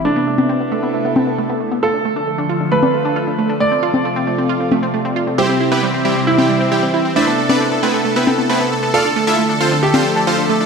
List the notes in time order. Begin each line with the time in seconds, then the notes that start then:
Already playing: C3
0.05 A3 B3 D4 E4 A4
0.16 B3
0.27 A3
0.38 B3, high conga
0.49 C4
0.60 B3
0.72 A3
0.83 B3
0.94 A3
1.05 B3
1.16 C4, high conga
1.27 B3
1.38 A3
1.49 B3
1.60 A3
1.72 B3
1.83 D3 F3 F4 A4
1.94 D4
2.05 A3
2.16 D4
2.27 A3
2.38 D4
2.49 F4
2.61 D4
2.72 A3 B4
2.83 D4, high conga
2.94 A3
3.05 D4
3.16 F4
3.27 D4
3.38 A3
3.49 D4
3.60 C3 A3 F4 D5
3.72 C4
3.83 F4
3.94 C4, high conga
4.05 A3
4.16 C4
4.27 A3
4.38 C4
4.49 F4
4.61 C4
4.72 A3, high conga
4.83 C4
4.94 A3
5.05 C4
5.16 F4
5.27 C4
5.38 E3 G3 C4 E4 G4 C5
5.49 C4
5.60 C4 E4
5.72 B3 C4 E4 G4 B4
5.83 G3 C4
5.94 C4
6.05 G3 C4 E4 G4
6.16 C4
6.27 C4 E4
6.38 G3 C4 E4 G4, high conga
6.49 G3 C4
6.60 C4
6.72 G3 C4 E4 G4
6.83 C4
6.94 C4 E4
7.05 C4
7.16 A3 B3 D4 E4 A4 B4 C5 E5
7.27 B3 A4
7.38 A3 A4
7.49 B3 D4 A4 B4 D5, high conga
7.60 C4 A4
7.72 B3 A4
7.83 A3 B3 C4 E4 B4
7.94 B3 A4
8.05 A3 A4
8.16 B3 C4 E4 B4
8.27 C4 A4, high conga
8.38 B3 A4
8.49 A3 B3 C4 E4 B4
8.61 B3 A4
8.72 A3 A4
8.83 B3 A4
8.94 D3 F3 A3 F4 A4 D5 F5
9.05 D4 A4
9.16 A3 A4
9.27 D4 E4 F4 A4 E5
9.38 A3 A4
9.49 D4 A4
9.60 C4 F4 A4 C5
9.72 D4 A4
9.83 A3 G4 A4
9.94 C4 D4 F4 A4 C5, high conga
10.05 A3 A4
10.16 D4 A4
10.27 C4 F4 A4 C5
10.38 D4 A4
10.49 A3 A4
10.60 D4 A4